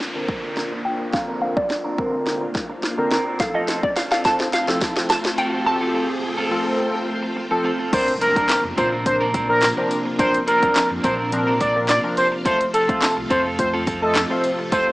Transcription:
Already playing: A#3 D4 F4 C5 F5 A5, downlifter, riser
0.00 muted clean electric guitar stroke, snare
0.15 D3 C4 A#4, muted clean electric guitar stroke
0.28 kick
0.43 muted clean electric guitar stroke
0.56 A#5, muted clean electric guitar stroke, snare
0.72 muted clean electric guitar stroke
0.85 G5
1.00 muted clean electric guitar stroke
1.13 D3 C4 A#4 F5, muted clean electric guitar stroke, kick, snare
1.28 C4 D4 A#4
1.41 C4 D4 A#4 F5
1.56 D5, muted clean electric guitar stroke, kick
1.70 muted clean electric guitar stroke, snare
1.84 C4 D4 A#4
1.98 D3 C4 D4 A#4, kick
2.13 muted clean electric guitar stroke
2.26 muted clean electric guitar stroke, snare
2.41 muted clean electric guitar stroke
2.55 kick, snare
2.70 muted clean electric guitar stroke
2.83 muted clean electric guitar stroke, snare
2.98 D3 C4 A#4, muted clean electric guitar stroke
3.11 C4 D4 A#4, snare
3.26 C4 D4 A#4
3.40 F3 A3 C4 F4 A4 F5, muted clean electric guitar stroke, kick, snare, closed hi-hat, tambourine
3.54 C4 F4 A4 D#5
3.68 C4 F4 A4, snare, closed hi-hat, tambourine
3.83 D5, muted clean electric guitar stroke, kick
3.96 F5, muted clean electric guitar stroke, snare, closed hi-hat, tambourine
4.11 C4 F4 A4 F5, snare
4.24 F3 C4 F4 A4 A5, kick, snare, closed hi-hat, tambourine
4.39 muted clean electric guitar stroke, snare
4.53 F5, muted clean electric guitar stroke, snare, closed hi-hat
4.68 F3 C4 A4, muted clean electric guitar stroke, snare
4.81 kick, snare, closed hi-hat, tambourine
4.96 muted clean electric guitar stroke, snare
5.09 A5, muted clean electric guitar stroke, snare, closed hi-hat, tambourine
5.24 muted clean electric guitar stroke, snare
5.38 C4 F4 A4 G5, closed hi-hat, tambourine
5.53 C4 F4 A4
5.66 F3 C4 A4 G5 A5, muted clean electric guitar stroke
5.81 C4 F4 A4
5.94 C4 F4 A4
6.09 muted clean electric guitar stroke
6.23 muted clean electric guitar stroke
6.38 C4 F4 A4
6.51 F3 C4 F4 A4
6.66 muted clean electric guitar stroke
6.79 muted clean electric guitar stroke
6.94 muted clean electric guitar stroke
7.23 muted clean electric guitar stroke
7.36 muted clean electric guitar stroke
7.51 F3 C4 A4, muted clean electric guitar stroke
7.64 C4 F4 A4
7.79 C4 F4 A4
7.92 A#1 C3 F3 A#3 C4 D4 F4 A#4 C5, kick, closed hi-hat, crash, tambourine, impact
8.08 muted clean electric guitar stroke, closed hi-hat
8.21 C4 D4 A#4, closed hi-hat
8.36 F3 C4 D4 A#4, kick, closed hi-hat
8.49 muted clean electric guitar stroke, snare, clap, closed hi-hat, tambourine
8.64 F2, muted clean electric guitar stroke
8.77 A#2 F3 C4 D4 F4 A#4 C5, kick, closed hi-hat, tambourine
8.92 C4 D4 A#4
9.06 F3 C4 D4 A#4 C5, muted clean electric guitar stroke, kick, closed hi-hat, tambourine
9.21 C4 D4 A#4
9.34 C4 D4 A#4, kick, closed hi-hat, tambourine
9.49 F3 C4 D4 A#4, muted clean electric guitar stroke
9.62 muted clean electric guitar stroke, snare, clap, closed hi-hat, tambourine
9.77 F3 C4 D4 A#4, muted clean electric guitar stroke
9.91 closed hi-hat, tambourine
10.05 muted clean electric guitar stroke
10.19 A#1 F3 C4 D4 A#4 C5, kick, closed hi-hat, tambourine
10.34 muted clean electric guitar stroke, closed hi-hat
10.47 C4 D4 A#4, closed hi-hat, tambourine
10.62 F3 C4 D4 A#4, kick, closed hi-hat
10.75 muted clean electric guitar stroke, snare, clap, closed hi-hat, tambourine
10.90 F2, muted clean electric guitar stroke
11.04 A#2 F3 C4 D4 A#4 C5, kick, closed hi-hat, tambourine
11.19 C4 D4 A#4
11.32 F3 C4 D4 A#4, muted clean electric guitar stroke, closed hi-hat, tambourine
11.47 C4 D4 A#4
11.60 C4 D4 A#4 D5, kick, closed hi-hat, tambourine
11.75 F3 C4 D4 A#4, muted clean electric guitar stroke
11.89 D5, muted clean electric guitar stroke, snare, clap, closed hi-hat, tambourine
12.04 F3 C4 D4 A#4, muted clean electric guitar stroke
12.17 C5, closed hi-hat, tambourine
12.32 muted clean electric guitar stroke
12.45 F1 A3 C4 F4 A4 C5, kick, closed hi-hat, tambourine
12.60 muted clean electric guitar stroke, closed hi-hat
12.73 C4 F4 A4, closed hi-hat, tambourine
12.88 A3 C4 F4 A4 C5, kick, closed hi-hat
13.02 muted clean electric guitar stroke, snare, clap, closed hi-hat, tambourine
13.17 C2, muted clean electric guitar stroke
13.30 F2 A3 C4 F4 A4 C5, kick, closed hi-hat, tambourine
13.45 C4 F4 A4
13.59 A3 C4 F4 C5, muted clean electric guitar stroke, kick, closed hi-hat, tambourine
13.73 C4 F4 A4
13.87 C4 F4 A4, kick, closed hi-hat, tambourine
14.02 A3 C4 F4 A4 D#5, muted clean electric guitar stroke
14.15 muted clean electric guitar stroke, snare, clap, closed hi-hat, tambourine
14.30 A3 C4 F4 C5, muted clean electric guitar stroke
14.44 closed hi-hat, tambourine
14.59 muted clean electric guitar stroke
14.72 F1 A3 C4 F4 G4 A4 C5, kick, closed hi-hat, tambourine
14.87 muted clean electric guitar stroke

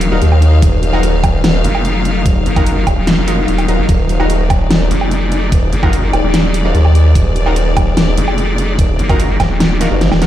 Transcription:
Already playing: F#3 D#4 A#4 F5
0.01 closed hi-hat
0.12 D#1 D#4 F4 F#4 A#4
0.22 D#2, closed hi-hat
0.32 low woodblock
0.42 closed hi-hat
0.62 D#1, kick, closed hi-hat
0.83 closed hi-hat
0.93 D#4 F4 F#4 A#4, low woodblock
1.03 closed hi-hat
1.24 kick, closed hi-hat, low woodblock
1.44 D#1, snare, closed hi-hat
1.64 F1, closed hi-hat
1.75 low woodblock
1.85 closed hi-hat
2.05 closed hi-hat
2.26 D#1, kick, closed hi-hat
2.46 F#1, closed hi-hat
2.56 D#4 F4 F#4 A#4, kick, closed hi-hat, low woodblock
2.66 closed hi-hat
2.87 D#1, kick, closed hi-hat, low woodblock
2.97 D#1
3.07 snare, closed hi-hat
3.18 F1
3.28 D#4 F4 F#4 A#4, closed hi-hat
3.48 D#1, closed hi-hat
3.58 closed hi-hat, low woodblock
3.68 D#1 D#4 F4 F#4 A#4, closed hi-hat
3.79 F#1
3.89 D#1 G#4, kick, closed hi-hat
4.09 closed hi-hat
4.20 D#4 F4 F#4 A#4, low woodblock
4.30 closed hi-hat
4.43 D5
4.50 kick, closed hi-hat, low woodblock
4.70 D#1, snare, closed hi-hat
4.91 F1, closed hi-hat
5.01 low woodblock
5.11 closed hi-hat
5.32 closed hi-hat
5.52 D#1, kick, closed hi-hat
5.72 F#1, closed hi-hat
5.83 D#4 F4 F#4 A#4, kick, low woodblock
5.93 closed hi-hat
6.13 D#1, closed hi-hat, low woodblock
6.24 D#1
6.34 snare, closed hi-hat
6.54 closed hi-hat
6.64 D#1 D#4 F4 F#4 A#4
6.75 D#2, closed hi-hat
6.85 low woodblock
6.95 closed hi-hat
7.15 D#1, kick, closed hi-hat
7.36 closed hi-hat
7.46 D#4 F4 F#4 A#4, low woodblock
7.56 closed hi-hat
7.77 kick, closed hi-hat, low woodblock
7.97 D#1, snare, closed hi-hat
8.17 F1, closed hi-hat
8.28 low woodblock
8.38 closed hi-hat
8.58 closed hi-hat
8.79 D#1, kick, closed hi-hat
8.99 F#1, closed hi-hat
9.09 D#4 F4 F#4 A#4, kick, closed hi-hat, low woodblock
9.20 closed hi-hat
9.40 D#1, kick, snare, closed hi-hat, low woodblock
9.50 D#1
9.60 snare, closed hi-hat
9.81 D#4 F4 F#4 A#4, snare, closed hi-hat
9.91 F#1
10.01 snare, closed hi-hat
10.11 D#1, snare, low woodblock
10.22 D#4 F4 F#4 A#4, snare, closed hi-hat

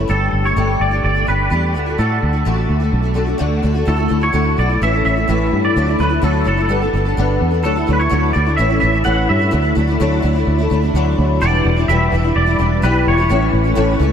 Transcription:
0.08 G1 G3 A3 D4 G4 A4
0.32 G1
0.44 A3 D4 G4 C#5
0.56 G1 G3 A3 D4 G4
0.80 G1 D5
0.91 A3 D4 G4
1.03 G1 D5
1.15 A3 D4 G4
1.27 G1 G3 A3 D4 G4 B4
1.50 E2 G3 A3 D4 G4
1.74 D2 D3 A3 D4 F#4
1.86 A3 D4 F#4
1.98 A2 D3 A3 D4 F#4 A4
2.22 D2
2.33 A3 D4 F#4
2.45 A1 D3 A3 D4 F#4
2.69 D2
2.80 A3 D4 F#4
2.92 B1
3.02 A3 D4 F#4
3.14 D3 A3 D4 F#4
3.26 A3 D4 F#4
3.38 D2 D3 A3 D4 F#4
3.63 D2 D3 A3 D4 F#4
3.74 A3 D4 F#4
3.85 D2 D3 A3 E4 F#4 A4
3.97 A3 E4 F#4
4.08 D2 D3 A3 E4 F#4
4.20 A3 E4 F#4 C#5
4.33 D2 D3 A3 E4 F#4
4.57 B1 D3 A3 E4 F#4 D5
4.69 A3 E4 F#4
4.81 A1 A2 E3 A3 C#4 E4 E5
4.93 A3 C#4 E4
5.05 A1 E3 A3 C#4 E4 E5
5.16 A3 C#4 E4
5.28 A1 A2 E3 A3 C#4 E4
5.53 G2
5.65 D5
5.76 D2 D3 F#3 A3 D4 E4
5.87 A3 D4 E4
5.99 D2 F#3 A3 D4 E4 B4
6.09 A3 D4 E4
6.22 D2 D3 F#3 A3 D4 E4 A4
6.44 F#1 F#3 A3 D4 E4 A4
6.57 A3 D4 E4
6.69 G1 G3 B3 D4 A4
6.82 B3 D4 A4
6.93 G1 G3 B3 D4 A4
7.05 B3 D4 A4
7.17 G1 G3 B3 D4 A4
7.41 E2
7.51 B3 D4 A4
7.63 D2 D3 F#3 A3 D4 E4 A4
7.76 A3 D4 E4
7.87 D2 F#3 A3 D4 E4
7.93 B4
7.98 A3 D4 E4 C#5
8.10 D2 D3 F#3 A3 D4 E4
8.33 D2 F#3 A3 D4 E4 D5
8.45 A3 D4 E4
8.57 A1 A2 E3 A3 C#4 E4 E5
8.69 A3 C#4 E4
8.80 A1 E3 A3 C#4 E4 E5
8.92 C#4 E4
8.96 A3
9.04 A1 A2 E3 A3 C#4 E4 F#5
9.29 G2 E5
9.38 A3 C#4 E4
9.51 D2 D3 F#3 A3 D4 E4
9.63 A3 D4 E4
9.75 D2 F#3 A3 D4 E4
9.87 A3 D4 E4
10.00 D2 D3 F#3 A3 D4 E4
10.22 D2 F#3 A3 D4 E4
10.35 A3 D4 E4
10.47 D2
10.58 A3 D4 E4
10.70 D2 F#3 A3 D4 E4
10.82 A3 D4 E4
10.94 D2 D3 F#3 A3 D4 E4
11.18 D2
11.41 E1 E2 B2 E3 G3 D4 E4 D5
11.65 E1
11.77 E3 G3 D4 E4
11.88 E1 E2 B2 E3 G3 D4 E4 E5
12.12 E1 E3 G3 D4 E4
12.23 E3 G3 D4 E4
12.35 E1 D5
12.46 E3 G3 D4 E4
12.59 E1 E3 G3 D4 E4
12.82 B1 E2 B2 E3 G3 D4 E4 B4
13.07 E1 C#5
13.17 E3 G3 D4 E4
13.29 A1 A2 E3 A3 C#4 E4
13.53 A1
13.64 A3 C#4 E4
13.75 A1 A2 E3 A3 C#4 E4
14.00 C#2 E3 A3 C#4 E4

